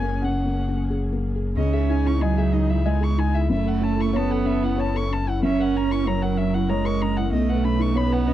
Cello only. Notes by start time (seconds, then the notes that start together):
Already playing: C#4
1.56 C#4
2.21 F#3
2.86 G#3
3.50 A3
4.16 B3
5.44 C#4
6.06 F#3
6.69 G#3
7.32 A3
7.95 B3